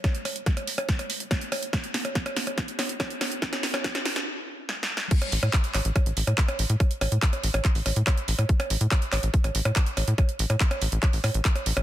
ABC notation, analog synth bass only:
X:1
M:4/4
L:1/16
Q:1/4=142
K:C
V:1 name="Analog synth bass" clef=bass
z16 | z16 | z16 | z2 A,,, A,, z2 A,,, A,,, z A,,, A,,, A,, z2 A,,, A,, |
z2 A,,, A,, z2 A,,, A,,, z A,,, A,,, A,, z2 A,,, A,, | z2 A,,, A,, z2 A,,, A,,, z A,,, A,,, A,, z2 A,,, A,, | z2 A,,, A,, z2 A,,, A,,, z A,,, A,, A,,, z2 A,,, A,,, |]